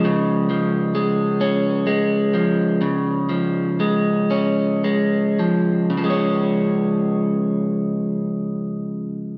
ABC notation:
X:1
M:6/8
L:1/8
Q:3/8=38
K:Db
V:1 name="Clean electric guitar" clef=bass
D, F, A, D A, F, | D, F, A, D A, F, | [D,F,A,D]6 |]